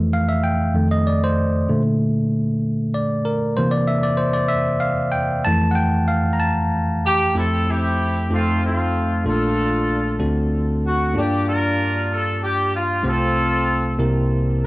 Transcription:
Already playing: F2 E3 A3
0.13 F5
0.29 E5
0.44 G5
0.74 F2 D#3 A3
0.91 D#5
1.07 D5
1.24 C5
1.69 A#2 D3 A3
2.94 D5
3.25 A#4
3.57 C3 E3 A#3 C5
3.71 D5
3.88 E5
4.03 D5
4.17 C5
4.33 D5
4.48 E5
4.80 F5
5.12 G5
5.45 F2 E3 A3 A5
5.71 F#5
5.75 G5
6.08 F5
6.33 A#5
6.40 A5
7.06 G4
7.35 F2 F3 A3 C4 E4 A4
7.69 C4 E4 G4
8.30 F2 A3 C4 D#4 F4 A4
8.63 A3 C4 F4
9.24 A#1 A#2 A3 A#3 D4 F4 A4
10.19 D2 D3 A3 C4 D4 F#4 A4
10.86 F#4
11.14 G2 A#3 D4 F4 G4 A4
11.23 D5
11.48 D4 F4 A#4
12.11 A4
12.44 G4
12.76 F4
13.03 C2 C3 A3 C4 F4 G4 A4 C5
13.07 C4 A4
13.99 C2 C3 A#3 C4 E4 G4 A#4

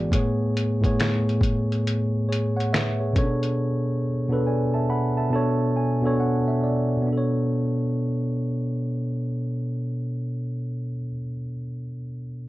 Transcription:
Already playing: E3 B3 F#4 G#4 D5
0.09 A2 A3 B3 G#4, kick, closed hi-hat
0.15 C#5
0.57 closed hi-hat
0.81 A2 A3 B3 G#4, kick, closed hi-hat
0.86 C#5
1.00 finger snap, snare, closed hi-hat
1.29 closed hi-hat
1.41 kick, closed hi-hat
1.72 closed hi-hat
1.87 closed hi-hat
2.29 G#4 C#5, closed hi-hat
2.57 C#5 F#5, closed hi-hat
2.73 B4 E5, finger snap, snare, closed hi-hat
3.00 G#4 C#5
3.13 B2 B3 C#4, kick, closed hi-hat
3.17 A4 C#5
3.22 D4
3.43 closed hi-hat
4.28 B2 B3 D4 A4
4.33 B4
4.47 D5 G#5
4.74 E5 A5
4.90 F#5 B5
5.17 E5 A5
5.30 B2 B3 D4 A4 A5
5.35 C#5
5.76 G#5
6.02 B2 B3 D4 A4
6.07 C#5
6.20 F#5
6.48 E5
6.63 D5
6.97 B2
7.02 B3
7.07 D4
7.13 A4
7.17 C#5

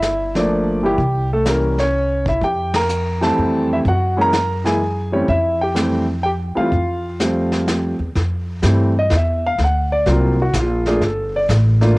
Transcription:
Already playing: G1 E4 E5
0.02 snare, hi-hat pedal
0.35 F3 A3 A#3 D4, snare
0.39 D4 D5
0.83 E3 G3 A#3 E4 G4
0.98 C2, brush sweep, kick
1.33 A3 A4
1.46 E3 G3 A#3 C#4 A#4, snare, hi-hat pedal
1.78 C#4 C#5, snare
2.26 E4 E5, kick
2.41 F2 G4 G5, brush sweep, kick
2.74 A#4 A#5, snare, ride
2.89 hi-hat pedal
3.21 E3 G3 A3 C4 A4 A5, snare
3.38 F2
3.73 E4 E5
3.85 F#2 F#4 F#5, brush sweep, kick
4.17 E3 G#3 A#3 C#4
4.21 A#4 A#5
4.33 snare, hi-hat pedal
4.64 E3 G#3 A#3 E4 G#4 G#5, snare
5.12 E3 G3 A3 C4 C#4 C#5
5.28 F2 E4 E5, brush sweep, kick
5.61 G4 G5
5.74 E3 G3 A3 C4, snare, hi-hat pedal
6.23 G4 G5
6.55 E3 G3 A3 C4 F5, muted upright bass stroke
6.59 F4
6.72 F2, brush sweep, kick
7.20 F3 G3 A3 C4, snare, hi-hat pedal
7.52 snare
7.68 snare, hi-hat pedal
7.99 E2
8.16 F2, brush sweep, kick, snare
8.62 G2 E3 G3 A3 C4, kick, snare, hi-hat pedal
8.99 D#5
9.10 E2, kick, snare
9.16 E5
9.46 F5
9.58 D2, brush sweep, kick, snare
9.64 F#5
9.92 D5
10.06 C2 F#3 A#3 C4 F4, kick, snare
10.12 A#4
10.42 F#4
10.53 A#1, kick, snare, hi-hat pedal
10.59 F4
10.86 A3 A#3 D4 F4 G#4, snare
11.01 G1, brush sweep, kick, snare
11.06 A4
11.36 D5
11.49 A1, kick, snare, hi-hat pedal
11.81 A3 A#3 D4 F4, snare

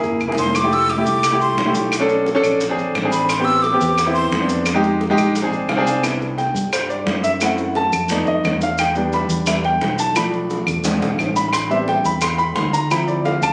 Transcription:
Already playing: A#3 E4 G#4
0.03 F#1, maracas
0.20 F1, claves, maracas
0.28 A#3 E4 G#4
0.32 low bongo
0.38 C6, maracas
0.44 low bongo
0.55 D6, high bongo, claves, maracas
0.63 A3 E4 G4
0.72 E6, high bongo, maracas
0.90 D6, high bongo, maracas
0.97 A3 E4 G4
1.06 C2, maracas
1.23 high bongo, claves, maracas
1.31 A3 E4 G4
1.41 C6, high bongo, maracas
1.57 B1, high bongo, low bongo, maracas
1.66 A3 E4 G4
1.75 high bongo, maracas
1.92 high bongo, claves, maracas
2.00 C#4 D4 A4
2.09 high bongo, maracas
2.26 high bongo, maracas
2.35 C#4 D4 A4
2.43 A#1, high bongo, claves, maracas
2.61 high bongo, maracas
2.70 C4 D4 G#4
2.78 A#1, maracas
2.95 A1, high bongo, low bongo, claves, maracas
3.03 C4 D4 G#4
3.12 B5, high bongo, maracas
3.29 C6, high bongo, claves, maracas
3.38 B3 C4 G4
3.44 E6, high bongo, maracas
3.62 D6, high bongo, maracas
3.73 B3 C4 G4
3.80 E2, maracas
3.98 high bongo, claves, maracas
4.06 B3 C4 E4
4.13 C6, high bongo, maracas
4.32 F2, high bongo, low bongo, maracas
4.40 B3 C4 D4
4.49 high bongo, maracas
4.66 high bongo, claves, maracas
4.74 G#3 D#4 G4
4.83 high bongo, maracas
5.01 high bongo, maracas
5.10 G#3 D#4 G4
5.17 A#1, high bongo, claves, maracas
5.36 high bongo, maracas
5.42 C4 D4 G#4
5.51 A#1, maracas
5.68 C2 F5, high bongo, low bongo, claves, maracas
5.77 C4 D4 G#4
5.86 G#5, high bongo, maracas
6.02 B3 D4 E4, high bongo, claves, maracas
6.21 high bongo, maracas
6.38 G5, high bongo, maracas
6.55 G2, maracas
6.73 C5, high bongo, claves, maracas
6.89 D5, high bongo, maracas
7.06 F#2, high bongo, low bongo, maracas
7.24 E5, high bongo, maracas
7.41 A3 C4 E4 F#5, high bongo, claves, maracas
7.58 high bongo, maracas
7.75 A5, high bongo, maracas
7.92 F2, high bongo, claves, maracas
8.09 A3 B3 D#4 D5, high bongo, maracas
8.26 F2 D#5, maracas
8.44 E2, high bongo, low bongo, claves, maracas
8.61 F5, high bongo, maracas
8.78 G5, high bongo, claves, maracas
8.95 G3 B3 D4, high bongo, maracas
9.13 B5, high bongo, maracas
9.29 E2, maracas
9.46 G3 B3 D4 E5, high bongo, claves, maracas
9.64 G5, high bongo, maracas
9.81 B1, high bongo, low bongo, maracas
9.99 A5, high bongo, maracas
10.16 F3 A3 D4 B5, high bongo, claves, maracas
10.33 high bongo, maracas
10.50 high bongo, maracas
10.67 E2, high bongo, claves, maracas
10.84 G#3 C4 D4, high bongo, maracas
11.02 B1, high bongo, maracas
11.18 A1, low bongo, claves, maracas
11.36 B5, low bongo, maracas
11.48 B5
11.53 C6, high bongo, claves, maracas
11.70 G3 B3 C4 D4 E5, high bongo, maracas
11.88 G5, high bongo, maracas
12.04 E2 B5, maracas
12.21 C6, high bongo, claves, maracas
12.38 B5, high bongo, maracas
12.55 D2 C6, high bongo, low bongo, maracas
12.73 A#5, high bongo, maracas
12.91 F3 C4 E4 B5, high bongo, claves, maracas
13.08 D5, high bongo, maracas
13.25 F5, high bongo, maracas
13.42 C#2 A5, high bongo, claves, maracas

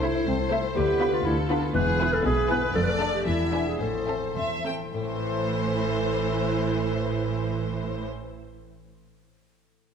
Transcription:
Already playing: C2 C3 C4 E4 C5 E5 A5
0.02 A3 E4 A4 C5 E5
0.15 E5
0.26 C2 C4 A5
0.40 C5
0.51 A3 E4 A4 C5 E5
0.63 E4
0.75 D2 D3 G4 B4
0.87 B3
0.99 B3 F4 B4 B5
1.11 F4 F5
1.24 D2 E4 A4 B5
1.36 B4
1.49 B3 D4 F4 B4 B5
1.61 B3
1.74 E1 E2 E3 G#4 B4
1.87 E4
1.99 B3 E4 G#4 B4 G#5
2.12 A4 B5
2.24 B1 B2 G#4 B4 G#5
2.36 E5
2.49 B3 E4 G#4 B4 G#5
2.61 B4
2.73 F1 F2 F3 A4 D5
2.83 B4
2.87 A3 A4
3.00 D4 A4 D5 A5
3.13 G4 A5
3.25 E1 E2 E3 E4 E5
3.39 B3
3.52 D4 B4 D5 E5 G#5
3.66 G#4 G#5
3.79 A1 A2 A4 C5
3.94 C4
4.07 C4 A4 C5 E5 A5
4.22 A5
4.35 E1 E2 E5 C6
4.50 C5
4.65 C4 A4 G5
4.79 C4
4.93 A1 A2 E3 A4 C5
5.01 A3
5.08 C4
5.15 A4
5.22 C5
5.29 A5

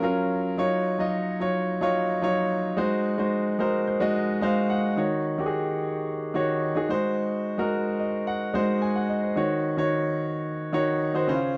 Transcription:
Already playing: F#3 C#4 F4 A#4
0.02 F#3 C#4 F4 A#4
0.57 F#3 D#4 F4 C#5
0.99 F#3 D#4 F4 D#5
1.40 F#3 D#4 F4 C#5
1.81 F#3 D#4 F4 C#5
2.22 F#3 D#4 F4 C#5
2.77 G#3 D#4 F#4 C5
3.18 G#3 D#4 F#4 C5
3.59 G#3 D#4 F#4 A#4 C5
3.87 C5
4.00 G#3 D#4 F#4 D#5
4.15 D#5
4.41 G#3 D#4 F#4 C5 F5
4.70 F#5
4.96 D#3 D#4 F#4 C#5
5.38 D#3 D#4 F#4 G4
5.46 G#4
6.34 D#3 D#4 F#4 C#5
6.75 D#3 D#4 F#4 G#4
6.89 G#3 D#4 F#4 C5
7.58 G#3 D#4 F#4 A#4
8.00 D#5
8.27 F#5
8.54 G#3 D#4 F#4 C5
8.82 G#5
8.95 F#5
9.09 D#5
9.23 C5
9.36 D#3 D#4 F#4 C#5
9.77 D#3 D#4 F#4 C#5
10.73 D#3 D#4 F#4 C#5
11.14 D#3 D#4 F#4 C5
11.28 C#3 C#4 E4 C5
11.35 F4

